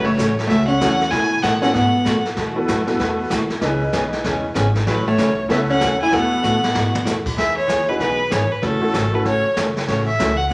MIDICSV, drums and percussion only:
0, 0, Header, 1, 2, 480
1, 0, Start_track
1, 0, Key_signature, 4, "major"
1, 0, Tempo, 312826
1, 1717, Time_signature, 4, 2, 24, 8
1, 16163, End_track
2, 0, Start_track
2, 0, Title_t, "Drums"
2, 286, Note_on_c, 9, 36, 24
2, 287, Note_on_c, 9, 38, 62
2, 287, Note_on_c, 9, 44, 53
2, 440, Note_off_c, 9, 36, 0
2, 441, Note_off_c, 9, 38, 0
2, 441, Note_off_c, 9, 44, 0
2, 592, Note_on_c, 9, 38, 41
2, 745, Note_off_c, 9, 38, 0
2, 763, Note_on_c, 9, 25, 50
2, 763, Note_on_c, 9, 38, 47
2, 765, Note_on_c, 9, 36, 27
2, 916, Note_off_c, 9, 38, 0
2, 918, Note_off_c, 9, 36, 0
2, 1240, Note_on_c, 9, 38, 62
2, 1240, Note_on_c, 9, 44, 63
2, 1241, Note_on_c, 9, 36, 18
2, 1393, Note_off_c, 9, 38, 0
2, 1393, Note_off_c, 9, 44, 0
2, 1394, Note_off_c, 9, 36, 0
2, 1536, Note_on_c, 9, 38, 43
2, 1690, Note_off_c, 9, 38, 0
2, 1713, Note_off_c, 9, 25, 0
2, 1713, Note_on_c, 9, 25, 55
2, 1713, Note_on_c, 9, 38, 48
2, 1718, Note_on_c, 9, 36, 29
2, 1867, Note_off_c, 9, 38, 0
2, 1871, Note_off_c, 9, 36, 0
2, 2194, Note_on_c, 9, 38, 60
2, 2194, Note_on_c, 9, 44, 55
2, 2197, Note_on_c, 9, 36, 20
2, 2347, Note_off_c, 9, 38, 0
2, 2347, Note_off_c, 9, 44, 0
2, 2350, Note_off_c, 9, 36, 0
2, 2495, Note_on_c, 9, 38, 39
2, 2648, Note_off_c, 9, 38, 0
2, 2674, Note_off_c, 9, 25, 0
2, 2674, Note_on_c, 9, 25, 45
2, 2674, Note_on_c, 9, 38, 42
2, 2675, Note_on_c, 9, 36, 24
2, 2828, Note_off_c, 9, 38, 0
2, 2829, Note_off_c, 9, 36, 0
2, 3154, Note_on_c, 9, 36, 25
2, 3155, Note_on_c, 9, 38, 64
2, 3155, Note_on_c, 9, 44, 66
2, 3308, Note_off_c, 9, 36, 0
2, 3309, Note_off_c, 9, 38, 0
2, 3309, Note_off_c, 9, 44, 0
2, 3455, Note_on_c, 9, 38, 41
2, 3608, Note_off_c, 9, 38, 0
2, 3627, Note_off_c, 9, 25, 0
2, 3627, Note_on_c, 9, 25, 52
2, 3627, Note_on_c, 9, 38, 49
2, 3631, Note_on_c, 9, 36, 27
2, 3780, Note_off_c, 9, 38, 0
2, 3784, Note_off_c, 9, 36, 0
2, 4112, Note_on_c, 9, 36, 17
2, 4113, Note_on_c, 9, 38, 59
2, 4113, Note_on_c, 9, 44, 56
2, 4265, Note_off_c, 9, 36, 0
2, 4267, Note_off_c, 9, 38, 0
2, 4267, Note_off_c, 9, 44, 0
2, 4411, Note_on_c, 9, 38, 42
2, 4564, Note_off_c, 9, 38, 0
2, 4589, Note_on_c, 9, 36, 26
2, 4592, Note_off_c, 9, 25, 0
2, 4592, Note_on_c, 9, 25, 49
2, 4592, Note_on_c, 9, 38, 49
2, 4743, Note_off_c, 9, 36, 0
2, 4746, Note_off_c, 9, 38, 0
2, 5066, Note_on_c, 9, 38, 64
2, 5066, Note_on_c, 9, 44, 63
2, 5069, Note_on_c, 9, 36, 17
2, 5220, Note_off_c, 9, 38, 0
2, 5220, Note_off_c, 9, 44, 0
2, 5223, Note_off_c, 9, 36, 0
2, 5371, Note_on_c, 9, 38, 42
2, 5525, Note_off_c, 9, 38, 0
2, 5544, Note_off_c, 9, 25, 0
2, 5544, Note_on_c, 9, 25, 54
2, 5544, Note_on_c, 9, 38, 52
2, 5547, Note_on_c, 9, 36, 24
2, 5697, Note_off_c, 9, 38, 0
2, 5701, Note_off_c, 9, 36, 0
2, 6027, Note_on_c, 9, 38, 58
2, 6027, Note_on_c, 9, 44, 51
2, 6028, Note_on_c, 9, 36, 27
2, 6180, Note_off_c, 9, 38, 0
2, 6180, Note_off_c, 9, 44, 0
2, 6181, Note_off_c, 9, 36, 0
2, 6330, Note_on_c, 9, 38, 39
2, 6483, Note_off_c, 9, 38, 0
2, 6507, Note_off_c, 9, 25, 0
2, 6507, Note_on_c, 9, 25, 51
2, 6507, Note_on_c, 9, 38, 46
2, 6508, Note_on_c, 9, 36, 23
2, 6660, Note_off_c, 9, 38, 0
2, 6661, Note_off_c, 9, 36, 0
2, 6985, Note_on_c, 9, 38, 65
2, 6985, Note_on_c, 9, 44, 53
2, 6989, Note_on_c, 9, 36, 27
2, 7138, Note_off_c, 9, 38, 0
2, 7138, Note_off_c, 9, 44, 0
2, 7142, Note_off_c, 9, 36, 0
2, 7290, Note_on_c, 9, 38, 44
2, 7444, Note_off_c, 9, 38, 0
2, 7466, Note_off_c, 9, 25, 0
2, 7466, Note_on_c, 9, 25, 54
2, 7466, Note_on_c, 9, 38, 52
2, 7469, Note_on_c, 9, 36, 22
2, 7619, Note_off_c, 9, 38, 0
2, 7623, Note_off_c, 9, 36, 0
2, 7950, Note_on_c, 9, 38, 65
2, 7950, Note_on_c, 9, 44, 54
2, 7952, Note_on_c, 9, 36, 18
2, 8104, Note_off_c, 9, 38, 0
2, 8104, Note_off_c, 9, 44, 0
2, 8105, Note_off_c, 9, 36, 0
2, 8433, Note_off_c, 9, 25, 0
2, 8433, Note_on_c, 9, 25, 50
2, 8433, Note_on_c, 9, 36, 19
2, 8433, Note_on_c, 9, 38, 50
2, 8586, Note_off_c, 9, 38, 0
2, 8587, Note_off_c, 9, 36, 0
2, 8913, Note_on_c, 9, 36, 21
2, 8913, Note_on_c, 9, 38, 62
2, 8913, Note_on_c, 9, 44, 56
2, 9067, Note_off_c, 9, 36, 0
2, 9067, Note_off_c, 9, 38, 0
2, 9067, Note_off_c, 9, 44, 0
2, 9395, Note_off_c, 9, 25, 0
2, 9395, Note_on_c, 9, 25, 49
2, 9395, Note_on_c, 9, 36, 28
2, 9395, Note_on_c, 9, 38, 52
2, 9548, Note_off_c, 9, 38, 0
2, 9549, Note_off_c, 9, 36, 0
2, 9874, Note_on_c, 9, 44, 52
2, 10028, Note_off_c, 9, 44, 0
2, 10181, Note_on_c, 9, 38, 61
2, 10335, Note_off_c, 9, 38, 0
2, 10358, Note_on_c, 9, 38, 79
2, 10512, Note_off_c, 9, 38, 0
2, 10663, Note_on_c, 9, 47, 87
2, 10816, Note_off_c, 9, 47, 0
2, 10838, Note_on_c, 9, 38, 55
2, 10838, Note_on_c, 9, 44, 55
2, 10991, Note_off_c, 9, 38, 0
2, 10991, Note_off_c, 9, 44, 0
2, 11139, Note_on_c, 9, 36, 70
2, 11143, Note_on_c, 9, 49, 77
2, 11293, Note_off_c, 9, 36, 0
2, 11296, Note_off_c, 9, 49, 0
2, 11319, Note_on_c, 9, 36, 26
2, 11323, Note_off_c, 9, 25, 0
2, 11323, Note_on_c, 9, 25, 47
2, 11323, Note_on_c, 9, 38, 44
2, 11472, Note_off_c, 9, 36, 0
2, 11476, Note_off_c, 9, 38, 0
2, 11797, Note_on_c, 9, 36, 20
2, 11800, Note_on_c, 9, 38, 65
2, 11800, Note_on_c, 9, 44, 51
2, 11951, Note_off_c, 9, 36, 0
2, 11954, Note_off_c, 9, 38, 0
2, 11954, Note_off_c, 9, 44, 0
2, 12276, Note_off_c, 9, 25, 0
2, 12276, Note_on_c, 9, 25, 46
2, 12276, Note_on_c, 9, 36, 19
2, 12276, Note_on_c, 9, 38, 46
2, 12429, Note_off_c, 9, 36, 0
2, 12429, Note_off_c, 9, 38, 0
2, 12755, Note_on_c, 9, 38, 66
2, 12755, Note_on_c, 9, 44, 53
2, 12756, Note_on_c, 9, 36, 23
2, 12909, Note_off_c, 9, 38, 0
2, 12909, Note_off_c, 9, 44, 0
2, 12910, Note_off_c, 9, 36, 0
2, 13233, Note_off_c, 9, 25, 0
2, 13233, Note_on_c, 9, 25, 54
2, 13233, Note_on_c, 9, 38, 48
2, 13236, Note_on_c, 9, 36, 21
2, 13386, Note_off_c, 9, 38, 0
2, 13389, Note_off_c, 9, 36, 0
2, 13715, Note_on_c, 9, 38, 64
2, 13715, Note_on_c, 9, 44, 56
2, 13716, Note_on_c, 9, 36, 19
2, 13869, Note_off_c, 9, 38, 0
2, 13869, Note_off_c, 9, 44, 0
2, 13870, Note_off_c, 9, 36, 0
2, 14197, Note_off_c, 9, 25, 0
2, 14197, Note_on_c, 9, 25, 47
2, 14197, Note_on_c, 9, 38, 43
2, 14199, Note_on_c, 9, 36, 24
2, 14350, Note_off_c, 9, 38, 0
2, 14352, Note_off_c, 9, 36, 0
2, 14678, Note_on_c, 9, 38, 70
2, 14678, Note_on_c, 9, 44, 67
2, 14680, Note_on_c, 9, 36, 23
2, 14832, Note_off_c, 9, 38, 0
2, 14832, Note_off_c, 9, 44, 0
2, 14834, Note_off_c, 9, 36, 0
2, 14985, Note_on_c, 9, 38, 43
2, 15138, Note_off_c, 9, 38, 0
2, 15160, Note_off_c, 9, 25, 0
2, 15160, Note_on_c, 9, 25, 51
2, 15160, Note_on_c, 9, 38, 51
2, 15161, Note_on_c, 9, 36, 23
2, 15313, Note_off_c, 9, 38, 0
2, 15315, Note_off_c, 9, 36, 0
2, 15644, Note_on_c, 9, 38, 68
2, 15644, Note_on_c, 9, 44, 48
2, 15645, Note_on_c, 9, 36, 24
2, 15798, Note_off_c, 9, 38, 0
2, 15798, Note_off_c, 9, 44, 0
2, 15799, Note_off_c, 9, 36, 0
2, 16163, Note_off_c, 9, 25, 0
2, 16163, End_track
0, 0, End_of_file